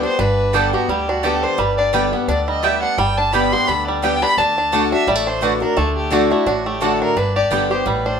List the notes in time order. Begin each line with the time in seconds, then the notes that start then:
Already playing: G3 B3 G4
0.03 B3 D4 G4 C5
0.19 G1 G2 D4 B4
0.53 D3 G3 B3 G4 A4 D5 G5
0.73 B3 F#4 G4
0.88 D2 D3 G3 G4
1.08 D4 F#4
1.23 D3 G3 B3 G4 A4 D5 G5
1.43 D4 C5
1.58 G1 G2 G3 B4
1.77 D4 D5
1.93 D3 G3 B3 G4 D5 G5
2.12 B3 G4
2.28 D2 D3 D4 D5
2.48 G3 D#5
2.63 D3 G3 B3 G4 D5 E5 G5
2.82 D4 F#5
2.98 G1 G2 G3 G5
3.17 D4 A5
3.33 D3 G3 B3 G4 D5 G5 B5
3.52 B3 G4 C6
3.67 D2 D3 D4 B5
3.87 G3 D5
4.02 D3 G3 B3 G4 D5 G5
4.22 B3 D4 G4 B5
4.37 D2 D3 D4 A5
4.58 D4
4.72 D3 A3 D4 F#4 D5 F#5
4.92 D4 F#4 E5
5.07 A1 A2 G3 D5
5.15 A3
5.27 D4 C5
5.41 D3 A3 D4 F#4 B4 D5 F#5
5.60 D4 F#4 A#4
5.77 D2 D3 A3 A4
5.96 G4
6.10 D3 A3 D4 F#4 D5 F#5
6.30 A3 D4 E4 F#4
6.46 A1 A2 D4 F#4
6.66 A3 G4
6.81 D3 A3 D4 F#4 A4 D5 F#5
7.01 D4 A#4
7.16 G1 G2 D4 B4
7.35 G4 D5
7.50 G1 D3 G3 B3 G4 D5 G5
7.70 B3 G4 C5
7.86 A1 A2 G3 B4
8.06 D4 C5